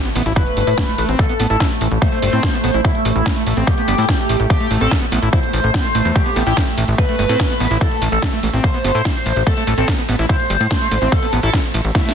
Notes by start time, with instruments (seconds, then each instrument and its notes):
Already playing: ambient pad A3, sub drop
0.05 acid bass B3, closed hi-hat
0.16 analog synth bass A1, acid bass B3, open hi-hat
0.26 analog synth bass A1, acid bass E4, closed hi-hat
0.36 acid bass E4, analog synth lead B4, kick, closed hi-hat
0.47 closed hi-hat
0.57 analog synth bass G1, open hi-hat
0.67 analog synth bass A2, open hi-hat
0.78 acid bass A3, kick, snare, closed hi-hat
0.88 acid bass A3, closed hi-hat
0.98 analog synth bass A1, acid bass A3, open hi-hat
1.09 analog synth bass A1, acid bass C4, closed hi-hat
1.19 acid bass A3, analog synth lead A4, kick, closed hi-hat
1.29 acid bass B3, closed hi-hat
1.40 analog synth bass A1, acid bass B3, open hi-hat
1.50 analog synth bass A1, acid bass E4, analog synth lead A4, closed hi-hat
1.60 acid bass E4, kick, snare, closed hi-hat
1.71 closed hi-hat
1.81 analog synth bass A1, open hi-hat
1.91 analog synth bass A1, closed hi-hat
2.02 acid bass A3, analog synth lead C5, kick, closed hi-hat
2.12 acid bass A3, closed hi-hat
2.22 analog synth bass G1, acid bass A3, open hi-hat
2.33 analog synth bass A2, acid bass C4, closed hi-hat
2.43 acid bass A3, kick, snare, closed hi-hat
2.54 acid bass B3, closed hi-hat
2.64 analog synth bass A1, acid bass B3, open hi-hat
2.74 analog synth bass A1, acid bass E4, closed hi-hat
2.85 analog synth lead E4, acid bass E4, kick, closed hi-hat
2.95 closed hi-hat
3.05 analog synth bass A1, open hi-hat
3.16 analog synth bass A1, analog synth lead E4, closed hi-hat
3.26 acid bass A3, kick, snare, closed hi-hat
3.36 acid bass A3, closed hi-hat
3.47 analog synth bass A1, acid bass A3, open hi-hat
3.57 analog synth bass A1, acid bass C4, closed hi-hat
3.67 acid bass A3, analog synth lead G4, kick, closed hi-hat
3.78 acid bass B3, closed hi-hat
3.88 analog synth bass G1, acid bass B3, open hi-hat
3.98 analog synth bass A2, acid bass E4, open hi-hat
4.09 acid bass E4, kick, snare
4.19 closed hi-hat
4.29 analog synth bass A1, open hi-hat
4.40 analog synth bass A1, closed hi-hat
4.50 acid bass A3, analog synth lead G4, kick, closed hi-hat
4.60 acid bass A3, closed hi-hat
4.71 analog synth bass A1, acid bass A3, open hi-hat
4.81 analog synth bass A1, acid bass C4, analog synth lead A4, closed hi-hat
4.91 acid bass A3, kick, snare, closed hi-hat
5.02 acid bass B3, closed hi-hat
5.12 analog synth bass A1, acid bass B3, open hi-hat
5.22 analog synth bass A1, acid bass E4, closed hi-hat
5.33 acid bass E4, analog synth lead C5, kick, closed hi-hat
5.43 closed hi-hat
5.53 analog synth bass A1, open hi-hat
5.64 analog synth bass A1, closed hi-hat
5.74 acid bass B3, kick, snare, closed hi-hat
5.85 acid bass A3, closed hi-hat
5.95 analog synth bass A1, acid bass A3, open hi-hat
6.05 analog synth bass E2, acid bass A3, closed hi-hat
6.16 acid bass A3, analog synth lead G4, kick, closed hi-hat, ride
6.26 acid bass B3, closed hi-hat
6.36 analog synth bass A1, acid bass B3, open hi-hat
6.47 analog synth bass A1, acid bass E4, analog synth lead G4, closed hi-hat
6.57 acid bass E4, kick, snare, closed hi-hat, ride
6.67 closed hi-hat
6.78 analog synth bass A1, open hi-hat
6.88 analog synth bass A1, closed hi-hat
6.98 acid bass A3, analog synth lead B4, kick, closed hi-hat, ride
7.09 acid bass A3, closed hi-hat
7.19 analog synth bass G1, acid bass A3, open hi-hat
7.29 analog synth bass A2, acid bass C4, open hi-hat
7.40 acid bass A3, kick, snare, closed hi-hat, ride
7.50 acid bass B3, closed hi-hat
7.60 analog synth bass A1, acid bass B3, open hi-hat
7.71 analog synth bass A1, acid bass E4, closed hi-hat
7.81 acid bass E4, analog synth lead A4, kick, closed hi-hat, ride
7.91 closed hi-hat
8.02 analog synth bass A1, open hi-hat
8.12 analog synth bass A1, analog synth lead A4, closed hi-hat
8.22 acid bass A3, kick, snare, closed hi-hat, ride
8.33 acid bass A3, closed hi-hat
8.43 analog synth bass A1, acid bass A3, open hi-hat
8.53 analog synth bass A1, acid bass C4, closed hi-hat
8.64 acid bass A3, analog synth lead C5, kick, closed hi-hat, ride
8.74 acid bass B3, closed hi-hat
8.85 analog synth bass G1, acid bass B3, open hi-hat
8.95 analog synth bass A2, acid bass E4, closed hi-hat
9.05 acid bass E4, kick, snare, closed hi-hat, ride
9.16 closed hi-hat
9.26 analog synth bass A1, open hi-hat
9.36 analog synth bass A1, closed hi-hat
9.47 acid bass A3, analog synth lead A4, kick, closed hi-hat, ride
9.57 acid bass A3, closed hi-hat
9.67 analog synth bass A1, acid bass A3, open hi-hat
9.78 analog synth bass A1, acid bass C4, analog synth lead A4, closed hi-hat
9.88 acid bass A3, kick, snare, closed hi-hat, ride
9.98 acid bass B3, closed hi-hat
10.09 analog synth bass A1, acid bass B3, open hi-hat
10.19 analog synth bass A1, acid bass E4, closed hi-hat
10.29 acid bass E4, analog synth lead C5, kick, closed hi-hat, ride
10.40 closed hi-hat
10.50 analog synth bass G1, open hi-hat
10.60 analog synth bass A2, open hi-hat
10.71 acid bass A3, kick, snare, closed hi-hat, ride
10.81 acid bass A3, closed hi-hat
10.91 analog synth bass A1, acid bass A3, open hi-hat
11.02 analog synth bass A1, acid bass C4, closed hi-hat
11.12 acid bass A3, analog synth lead A4, kick, closed hi-hat, ride
11.22 acid bass B3, closed hi-hat
11.33 analog synth bass A1, acid bass B3, open hi-hat
11.43 analog synth bass A1, acid bass E4, analog synth lead A4, closed hi-hat
11.54 kick, snare, closed hi-hat, ride
11.64 closed hi-hat
11.74 analog synth bass A1, open hi-hat
11.85 analog synth bass A1, closed hi-hat
11.95 acid bass A3, analog synth lead E4, kick, snare, closed hi-hat, ride
12.05 acid bass A3, snare, closed hi-hat